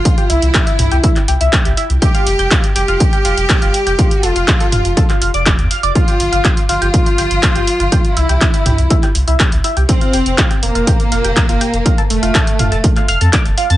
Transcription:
<<
  \new Staff \with { instrumentName = "Synth arpeggio sound" } { \time 4/4 \key f \major \tempo 4 = 122 r16 <g' g''>16 <e' e''>16 r16 <g' g''>16 <e' e''>16 r16 <g' g''>16 <e' e''>16 r16 <g' g''>16 <e' e''>16 r16 <g' g''>16 <e' e''>16 r16 | <g' g''>16 <f' f''>16 r16 <g' g''>16 <f' f''>16 r16 <g' g''>16 <f' f''>16 r16 <g' g''>16 <f' f''>16 r16 <g' g''>16 <f' f''>16 r16 <g' g''>16 | <f' f''>16 r16 <a' a''>16 <f' f''>16 r16 <a' a''>16 <f' f''>16 r16 <a' a''>16 <f' f''>16 <f' f''>16 <d'' d'''>16 <d'' d'''>16 r16 <f'' f'''>16 <d'' d'''>16 | <f' f''>16 <g' g''>16 r16 <f' f''>16 <g' g''>16 r16 <f' f''>16 <g' g''>16 r16 <f' f''>16 <g' g''>16 r16 <f' f''>16 <g' g''>16 r16 <f' f''>16 |
<g' g''>16 r16 <e' e''>16 <g' g''>16 r16 <e' e''>16 <g' g''>16 r16 <e' e''>16 <g' g''>16 r16 <e' e''>16 <g' g''>16 r16 <e' e''>16 <g' g''>16 | r16 <f' f''>16 <g' g''>16 r16 <f' f''>16 <g' g''>16 r16 <f' f''>16 <g' g''>16 r16 <f' f''>16 <g' g''>16 r16 <f' f''>16 <g' g''>16 r16 | <f' f''>16 <a' a''>16 r16 <f' f''>16 <a' a''>16 r16 <f' f''>16 <a' a''>16 r16 <f' f''>16 <f'' f'''>16 <a' a''>16 <d'' d'''>16 r16 <f' f''>16 <a'' a'''>16 | }
  \new Staff \with { instrumentName = "Analog synth lead" } { \time 4/4 \key f \major f'8 e'2 r4. | g'4. g'2~ g'8~ | g'8 f'2 r4. | f'4. f'2~ f'8~ |
f'8 e'2 r4. | c'4. bes2~ bes8~ | bes8 a2 r4. | }
  \new Staff \with { instrumentName = "Violin section" } { \time 4/4 \key f \major f'8 e'2 r4. | g'4. g'2~ g'8~ | g'8 f'2 r4. | f'4. f'2~ f'8~ |
f'8 e'2 r4. | c'4. bes2~ bes8~ | bes8 a2 r4. | }
  \new Staff \with { instrumentName = "Analog synth bass" } { \clef bass \time 4/4 \key f \major r8 c,16 c,16 r8 c,16 c,16 r8 c,16 c,16 r16 c,16 r16 c,16 | r8 f,,16 f,,16 r8 f,,16 f,,16 r8 f,,16 f,,16 r16 f,,16 r16 f,,16 | r8 f,,16 f,,16 r8 f,,16 f,,16 r8 f,,16 f,,8 f,16 r16 f,,16 | r8 g,,16 g,,16 r8 g,,16 g,,16 r8 g,,16 g,,16 r16 g,,16 r16 g,,16 |
r8 c,16 c,16 r8 c,16 c,16 r8 c,16 c,16 r16 c,16 r16 c,16 | r8 f,,16 f,,16 r8 f,,16 f,,16 r8 f,,16 f,,16 r16 f,,16 r16 f,,16 | r8 f,,16 f,,16 r8 f,,16 f,,16 r8 f,,16 f,16 r16 f,,16 r16 f,16 | }
  \new DrumStaff \with { instrumentName = "Drums" } \drummode { \time 4/4 <hh bd>16 hh16 hho16 hh16 <hc hh bd>16 hh16 <hho toml>16 hh16 <hh bd>16 <hc hh>16 hho16 hh16 <hc hh bd>16 hh16 hho16 hh16 | <hh bd>16 hh16 hho16 hh16 <hc hh bd>16 hh16 hho16 hh16 <hh bd>16 hh16 hho16 hh16 <hc hh bd>16 hh16 hho16 hh16 | <hh bd>16 hh16 hho16 hh16 <hc hh bd>16 hh16 <hho toml>16 hh16 <hh bd>16 <hc hh>16 hho16 hh16 <hc hh bd>16 hh16 hho16 hh16 | <hh bd>16 hh16 hho16 hh16 <hc hh bd>16 hh16 hho16 hh16 <hh bd>16 hh16 hho16 hh16 <hc hh bd>16 hh16 hho16 hh16 |
<hh bd>16 hh16 hho16 hh16 <hc hh bd>16 hh16 <hho toml>16 hh16 <hh bd>16 <hc hh>16 hho16 hh16 <hc hh bd>16 hh16 hho16 hh16 | <hh bd>16 hh16 hho16 hh16 <hc hh bd>16 hh16 hho16 hh16 <hh bd>16 hh16 hho16 hh16 <hc hh bd>16 hh16 hho16 hh16 | <hh bd>16 hh16 hho16 hh16 <hc hh bd>16 hh16 <hho toml>16 hh16 <hh bd>16 <hc hh>16 hho16 hh16 <hc hh bd>16 hh16 hho16 hh16 | }
>>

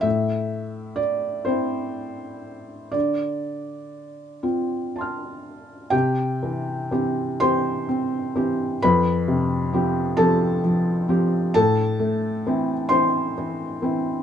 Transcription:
\new Staff \with { instrumentName = "Felt piano" } { \time 6/8 \key c \major \tempo 4. = 43 << { e''4 d''8 c''4. | d''4. r8 <a'' c''' f'''>4 | <g' g''>4. <c'' c'''>4. | <b' b''>4. <a' a''>4. |
<a' a''>4. <c'' c'''>4. | } \\ { a,4. <c' e'>4. | d4. <c' f'>4. | c8 e8 <e c' g'>8 <e c' g'>8 c'8 <e c' g'>8 | f,8 c8 <f c' g'>8 <f c' g'>8 f8 <f c' g'>8 |
a,8 a8 <e c' e'>8 <e c' e'>8 e8 <e c' e'>8 | } >> }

